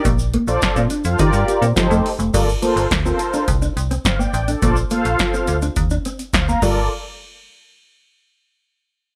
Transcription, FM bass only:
\new Staff \with { instrumentName = "FM bass" } { \clef bass \time 4/4 \key g \minor \tempo 4 = 105 bes,,8. bes,,16 bes,16 bes,16 r16 f,16 ees16 g,16 r16 bes,16 f16 f,16 r16 f,,16 | g,,8 r16 g,,16 d,8 r8 c,8 c,8 g,,8 a,,8 | bes,,8 r16 bes,,16 r8 d,8 ees,8 r8 d,8 g,,8 | r1 | }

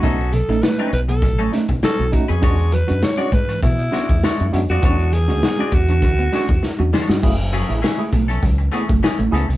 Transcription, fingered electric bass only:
\new Staff \with { instrumentName = "Fingered electric bass" } { \clef bass \time 4/4 \key fis \minor \tempo 4 = 100 b,,8. a,,16 r8 b,,8 a,,8 r16 b,,16 r16 b,,16 r16 eis,16 | e,8. fis,16 r8 gis,8 b,8 r16 e,16 r16 fis,16 fis,16 eis,16 | e,8. d,16 r8 e,8 d,8 r16 e,16 r16 e,16 r16 g,16 | fis,,8. a,,16 r8 b,,8 cis,8 r16 fis,,16 r16 a,,16 cis,16 bis,,16 | }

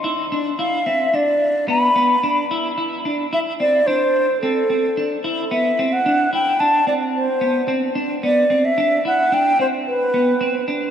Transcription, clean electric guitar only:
\new Staff \with { instrumentName = "Clean electric guitar" } { \time 5/4 \key a \minor \tempo 4 = 110 e'8 d'8 e'8 c'8 d'4 b8 b8 d'8 e'8 | e'8 d'8 e'8 c'8 d'4 c'8 c'8 d'8 e'8 | \key c \lydian b8 c'8 d'8 e'8 d'8 c'4 b8 c'8 d'8 | b8 c'8 d'8 e'8 d'8 c'4 b8 c'8 d'8 | }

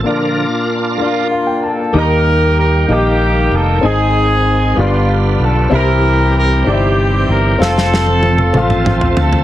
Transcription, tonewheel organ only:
\new Staff \with { instrumentName = "Tonewheel organ" } { \time 6/8 \key ees \lydian \tempo 4. = 64 << { <d' f' bes'>2 r4 | <ees g bes g'>2. | <ees aes c' aes'>4. <d g b f'>4. | <e g c' f' g'>2. |
<f a c' a'>2. | } \\ { <d f bes>8 r2 r8 | r2. | r2. | r2. |
r2. | } >> }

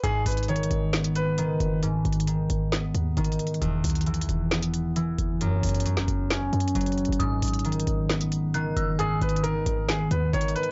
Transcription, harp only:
\new Staff \with { instrumentName = "Harp" } { \clef bass \time 4/4 \key gis \minor \tempo 4 = 134 gis,4 dis4 b4 dis4 | gis,4 dis4 b4 dis4 | e,4 e4 b4 e4 | fis,4 fis4 cis'4 fis4 |
gis,4 dis4 b4 dis4 | gis,4 dis4 b4 dis4 | }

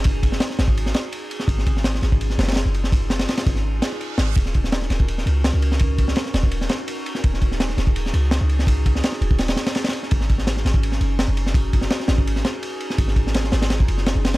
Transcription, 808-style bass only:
\new Staff \with { instrumentName = "808-style bass" } { \clef bass \time 4/4 \key aes \dorian \tempo 4 = 167 ges,,4 r8 aes,,4 r4. | aes,,4. aes,,4 ges,,8. ges,,8.~ | ges,,4 r8 aes,,4 r4 aes,,8 | ees,,4. ees,,4 des,8. des,8.~ |
des,4 r8 ees,,4 r4. | ees,,4. ees,,4 des,8. des,8.~ | des,4 r8 ees,,4 r4. | aes,,4. aes,,4 ges,,8. ges,,8.~ |
ges,,4 r8 aes,,4 r4. | aes,,4. aes,,4 ges,,8. ges,,8. | }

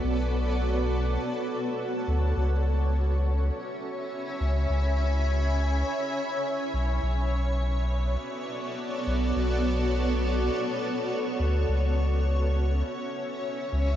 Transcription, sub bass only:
\new Staff \with { instrumentName = "Sub bass" } { \clef bass \time 4/4 \key b \dorian \tempo 4 = 103 b,,2 r4. d,8 | cis,2 r4. cis,8 | cis,2 r4. b,,8 | b,,2 r4. b,,8 |
b,,2 r4. d,8 | cis,2 r4. cis,8 | }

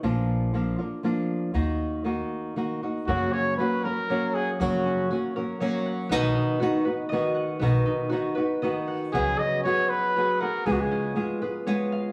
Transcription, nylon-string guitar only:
\new Staff \with { instrumentName = "Nylon-string guitar" } { \time 3/4 \key ees \minor \tempo 4 = 119 <bes, f bes d' f'>4 <f bes d' f'>8 <bes d' f'>8 <f bes d' f'>4 | <ees bes ees' ges'>4 <ees bes ees' ges'>4 <ees bes ees' ges'>8 <bes ees' ges'>8 | \key fis \major <fis, cis fis ais cis' fis'>4 <fis ais cis' fis'>8 <fis ais cis' fis'>8 <fis ais cis' fis'>4 | <fis, cis fis ais cis' fis'>4 <fis ais cis' fis'>8 <fis ais cis' fis'>8 <fis ais cis' fis'>4 |
<b, dis b dis' fis'>4 <dis b dis' fis'>8 <b dis' fis'>8 <dis b dis' fis'>4 | <b, dis b dis' fis'>4 <dis b dis' fis'>8 <b dis' fis'>8 <dis b dis' fis'>4 | <cis fis b fis' gis'>4 <fis b fis' gis'>4 <fis b fis' gis'>8 <b fis' gis'>8 | <cis gis b eis' gis'>4 <gis b eis' gis'>8 <b eis' gis'>8 <gis b eis' gis'>4 | }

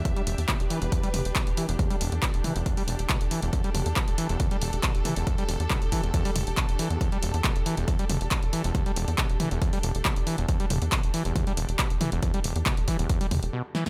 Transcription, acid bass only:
\new Staff \with { instrumentName = "Acid bass" } { \clef bass \time 4/4 \key e \minor \tempo 4 = 138 e,16 g16 e,,16 r16 b,16 r16 e16 e,16 e,16 g16 e,,16 r16 b,16 r16 e16 e,16 | e,16 g16 e,,16 r16 b,16 r16 e16 e,16 e,16 g16 e,,16 r16 b,16 r16 e16 e,16 | e,16 g16 e,,16 r16 b,16 r16 e16 e,16 e,16 g16 e,,16 r16 b,16 r16 e16 e,16 | e,16 g16 e,,16 r16 b,16 r16 e16 e,16 e,16 g16 e,,16 r16 b,16 r16 e16 e,16 |
e,16 g16 e,,16 r16 b,16 r16 e16 e,16 e,16 g16 e,,16 r16 b,16 r16 e16 e,16 | e,16 g16 e,,16 r16 b,16 r16 e16 e,16 e,16 g16 e,,16 r16 b,16 r16 e16 e,16 | e,16 g16 e,,16 r16 b,16 r16 e16 e,16 e,16 g16 e,,16 r16 b,16 r16 e16 e,16 | e,16 g16 e,,16 r16 b,16 r16 e16 e,16 e,16 g16 e,,16 r16 b,16 r16 e16 e,16 | }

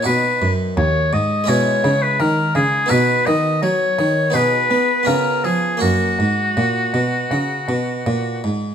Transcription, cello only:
\new Staff \with { instrumentName = "Cello" } { \clef bass \time 4/4 \key cis \dorian \tempo 4 = 83 b,8 fis,8 dis,8 gis,8 b,8 cis8 dis8 cis8 | \key fis \major b,8 dis8 fis8 dis8 b,8 b8 cis8 eis8 | fis,8 gis,8 ais,8 b,8 cis8 b,8 ais,8 gis,8 | }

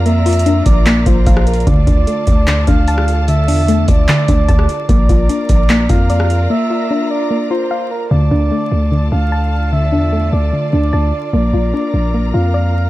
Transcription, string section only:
\new Staff \with { instrumentName = "String section" } { \time 4/4 \key d \minor \tempo 4 = 149 << { <bes' bes''>1 | <a' a''>1~ | <a' a''>1 | <bes' bes''>1~ |
<bes' bes''>1 | <a' a''>1~ | <a' a''>1 | <bes' bes''>1 | } \\ { <f' d''>1~ | <f' d''>1~ | <f' d''>1 | <f' d''>1~ |
<f' d''>1 | <f' d''>1~ | <f' d''>1~ | <f' d''>1 | } >> }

